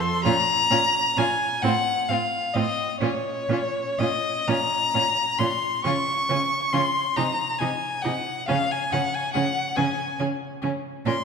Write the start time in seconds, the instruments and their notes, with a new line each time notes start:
0.00 viola A4, violin C6
0.24 cello A#2, viola C#4, violin F4 A#5
0.71 cello A#2, viola C#4, violin F4
1.17 cello A#2, viola C#4, violin F4 G#5
1.62 cello A2, viola C4, violin F#5
1.67 violin F4
2.08 cello A2, viola C4, violin F5
2.12 violin F4
2.54 cello A2, viola C4, violin F4 D#5
3.00 cello A#2, viola C#4, violin F4 C#5
3.49 cello A#2, viola C#4, violin F4
3.98 cello A#2, viola C#4, violin F4 D#5
4.47 cello A#2, viola C#4, violin F4 A#5
4.94 cello A#2, viola C#4, violin F4
5.38 cello A#2, viola C#4, violin F4 C6
5.84 cello C#3, viola C#4, violin F4 C#6
6.29 cello C#3, viola C#4, violin F4
6.73 cello C#3, viola C#4, violin F4 C6
7.16 cello C3, viola D#4, violin G#4 A#5
7.58 cello C3, viola D#4, violin G#4 G#5
8.02 cello C3, viola D#4, violin G#4 F#5
8.48 cello C#3, viola C#4, violin G#4 F5
8.72 violin G#5
8.91 cello C#3, viola C#4, violin G#4 F#5
9.15 violin G#5
9.33 cello C#3, viola C#4, violin G#4 F#5
9.76 cello C#3, viola C#4, violin G#4 G#5
10.19 cello C#3, viola C#4, violin G#4
10.62 cello C#3, viola C#4, violin G#4
11.06 cello A#2, viola C#4, violin A#4 C6